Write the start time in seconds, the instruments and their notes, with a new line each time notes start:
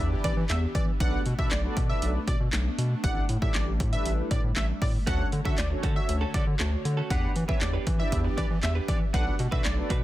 Already playing: analog synth pad E3 B3 D4 G4, analog polysynth D4 E4 G4 B4 D5
0.00 analog synth bass E2
0.24 analog synth bass E3, digital synth lead D5, kick, closed hi-hat
0.37 analog synth bass E3
0.50 analog synth bass E2, digital synth lead E5, snare, clap, closed hi-hat
0.75 analog synth bass E3, digital synth lead D5, kick, closed hi-hat
1.00 analog synth bass B1, analog synth pad A3 D4, analog polysynth D4 F#4 A4 B4 D5, digital synth lead F#5, kick, closed hi-hat
1.26 analog synth bass B2, closed hi-hat
1.38 analog synth bass B2, analog polysynth D4 F#4 A4 B4 D5, digital synth lead E5, kick
1.51 analog synth bass B1, digital synth lead D5, snare, clap, closed hi-hat
1.64 analog polysynth D4 F#4 A4 B4 D5
1.77 analog synth bass B2, kick, closed hi-hat
1.89 digital synth lead E5
2.02 analog synth bass B1, closed hi-hat
2.27 analog synth bass B2, digital synth lead D5, kick, closed hi-hat
2.40 analog synth bass B2
2.53 analog synth bass B1, snare, clap, closed hi-hat
2.78 analog synth bass B2, closed hi-hat
3.04 analog synth bass A1, analog synth pad G3, analog polysynth D4 E4 G4 A4 D5, digital synth lead F#5, kick, closed hi-hat
3.29 analog synth bass A2, closed hi-hat
3.42 analog synth bass A2, analog polysynth D4 E4 G4 A4 D5, digital synth lead E5, kick
3.54 analog synth bass A1, digital synth lead D5, snare, clap, closed hi-hat
3.80 analog synth bass A2, kick, closed hi-hat
3.92 analog polysynth D4 E4 G4 A4 B4, digital synth lead E5, closed hi-hat
4.05 analog synth bass A1, closed hi-hat
4.31 analog synth bass A2, digital synth lead D5, kick, closed hi-hat
4.44 analog synth bass A2
4.56 analog synth bass A1, digital synth lead E5, snare, clap, closed hi-hat
4.82 analog synth bass A2, digital synth lead D5, kick, open hi-hat
5.07 analog synth bass D2, analog synth pad D3 F#4 C#5, clean electric guitar A3 C#4 F#4 A4, analog polysynth C#4 D4 F#4 A4 C#5, digital synth lead F#5, kick, closed hi-hat
5.20 muted clean electric guitar stroke
5.32 analog synth bass D3, muted clean electric guitar stroke, closed hi-hat
5.45 analog synth bass D3, clean electric guitar A3 C#4 F#4 A4, analog polysynth C#4 D4 F#4 A4 C#5, digital synth lead E5, kick
5.58 analog synth bass D2, digital synth lead D5, snare, clap, closed hi-hat
5.70 analog polysynth C#4 D4 F#4 A4 C#5, muted clean electric guitar stroke
5.83 analog synth bass D3, clean electric guitar A3 C#4 F#4 A4, kick, closed hi-hat
5.96 digital synth lead E5, muted clean electric guitar stroke
6.08 analog synth bass D2, muted clean electric guitar stroke, closed hi-hat
6.21 clean electric guitar A3 C#4 F#4 A4
6.34 analog synth bass D3, clean electric guitar A3 C#4 F#4 A4, digital synth lead D5, kick, closed hi-hat
6.47 analog synth bass D3, muted clean electric guitar stroke
6.59 analog synth bass D2, clean electric guitar A3 C#4 F#4 A4, snare, clap, closed hi-hat
6.72 muted clean electric guitar stroke
6.85 analog synth bass D3, muted clean electric guitar stroke, closed hi-hat
6.97 clean electric guitar A3 C#4 F#4 A4
7.10 analog synth bass E2, analog synth pad E3 B3 D4 G4, clean electric guitar B3 D4 G4 B4, analog polysynth D4 E4 G4 B4 D5, digital synth lead F#5, kick, closed hi-hat
7.36 analog synth bass E3, muted clean electric guitar stroke, closed hi-hat
7.48 analog synth bass E3, clean electric guitar B3 D4 G4 B4, analog polysynth D4 E4 G4 B4 C#5, digital synth lead E5, kick
7.61 analog synth bass E2, digital synth lead D5, muted clean electric guitar stroke, snare, clap, closed hi-hat
7.73 clean electric guitar B3 D4 G4 B4
7.86 analog synth bass E3, muted clean electric guitar stroke, kick, closed hi-hat
7.99 analog polysynth D4 E4 G4 B4 D5, digital synth lead E5, muted clean electric guitar stroke
8.12 analog synth bass E2, kick, closed hi-hat
8.25 muted clean electric guitar stroke
8.37 analog synth bass E3, clean electric guitar B3 D4 G4 B4, digital synth lead D5, kick, closed hi-hat
8.50 analog synth bass E3, muted clean electric guitar stroke
8.63 analog synth bass E2, digital synth lead E5, muted clean electric guitar stroke, snare, clap, closed hi-hat
8.75 clean electric guitar B3 D4 G4 B4
8.88 analog synth bass E3, clean electric guitar B3 D4 G4 B4, digital synth lead D5, kick, closed hi-hat
9.01 muted clean electric guitar stroke
9.13 analog synth bass B1, clean electric guitar A3 D4 F#4 B4, analog synth pad A3, analog polysynth D4 F#4 A4 B4 D5, digital synth lead F#5, kick, closed hi-hat
9.26 muted clean electric guitar stroke
9.39 analog synth bass B2, muted clean electric guitar stroke, closed hi-hat
9.51 analog synth bass B2, clean electric guitar A3 D4 F#4 B4, analog polysynth D4 F#4 A4 B4 D5, digital synth lead E5, kick
9.65 analog synth bass B1, digital synth lead D5, snare, clap, closed hi-hat
9.77 analog polysynth D4 F#4 A4 B4 D5, muted clean electric guitar stroke
9.90 analog synth bass B2, clean electric guitar A3 D4 F#4 B4, kick, closed hi-hat